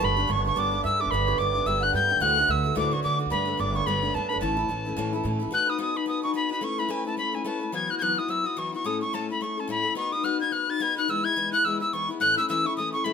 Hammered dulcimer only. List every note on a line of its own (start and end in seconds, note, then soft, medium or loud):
0.00 1.12 G4 medium
0.00 2.83 A4 medium
0.00 1.10 B4 medium
0.00 0.29 C#5 medium
0.00 0.83 E5 medium
0.29 0.45 C#5 medium
0.46 0.62 C#5 medium
0.56 1.00 D5 medium
0.83 1.65 E5 medium
1.00 1.33 D5 medium
1.10 3.31 B4 medium
1.27 1.44 C#5 medium
1.38 2.76 D5 medium
1.66 2.48 E5 medium
1.80 1.98 F#5 medium
1.92 2.10 G5 medium
2.10 2.27 G5 medium
2.21 4.36 F#5 medium
2.48 4.78 E5 medium
2.77 2.99 D5 medium
2.93 3.10 C#5 medium
3.04 3.59 D5 medium
3.32 3.87 B4 medium
3.59 3.82 D5 medium
3.76 6.31 C#5 medium
3.87 4.30 B4 medium
4.15 4.42 A4 medium
4.30 7.04 B4 medium
4.42 7.35 A4 medium